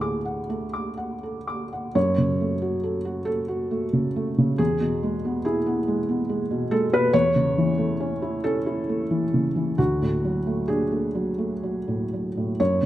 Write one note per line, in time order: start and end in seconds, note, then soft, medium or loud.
0.00 0.45 D2 soft
0.00 0.16 A2 soft
0.00 1.95 G#4 soft
0.00 0.50 A4 soft
0.00 0.25 F#5 soft
0.00 0.73 D6 soft
0.25 0.64 F#5 soft
0.49 1.92 A3 soft
0.49 0.88 A4 soft
0.73 1.13 D6 soft
0.97 1.38 F#5 soft
1.23 1.63 A4 soft
1.47 1.86 D6 soft
1.73 1.96 F#5 soft
1.95 4.55 F#2 soft
1.95 3.27 C#5 medium
2.18 2.53 C#3 soft
2.41 2.75 A3 soft
2.62 2.97 F#4 soft
2.83 3.18 A4 soft
3.05 3.40 F#4 soft
3.25 4.59 A4 medium
3.48 3.84 F#4 soft
3.71 4.06 A3 soft
3.93 4.29 C#3 soft
4.16 4.51 A3 soft
4.38 4.60 C#3 soft
4.58 7.09 E2 soft
4.58 5.43 G#4 medium
4.81 5.15 B2 soft
5.03 5.37 G#3 soft
5.25 5.58 B3 soft
5.45 5.78 E4 soft
5.45 6.71 G#4 medium
5.66 5.99 B3 soft
5.88 6.21 G#3 soft
6.09 6.42 B3 soft
6.29 6.63 G#3 soft
6.51 6.84 B2 soft
6.71 7.05 G#3 soft
6.71 6.92 A4 medium
6.93 7.14 B2 soft
6.93 7.14 B4 medium
7.13 9.75 E2 medium
7.13 8.43 C#5 loud
7.36 7.69 C#3 soft
7.58 7.91 E3 soft
7.78 8.12 A3 soft
8.00 8.35 C#4 soft
8.22 8.57 E4 soft
8.44 8.79 C#4 soft
8.44 9.79 A4 medium
8.66 9.02 E4 soft
8.89 9.25 A3 soft
9.11 9.47 E3 soft
9.34 9.70 C#3 soft
9.56 9.79 E3 soft
9.78 12.56 D2 soft
9.78 10.68 F#4 medium
10.02 10.38 A2 soft
10.24 10.60 F#3 soft
10.47 10.82 A3 soft
10.68 11.05 D4 soft
10.68 12.59 G#4 medium
10.92 11.29 A3 soft
11.15 11.53 F#3 soft
11.38 11.77 A3 soft
11.63 12.02 F#3 soft
11.88 12.27 A2 soft
12.13 12.51 F#3 soft
12.37 12.60 A2 soft
12.60 12.86 F#2 soft
12.60 12.86 C#5 medium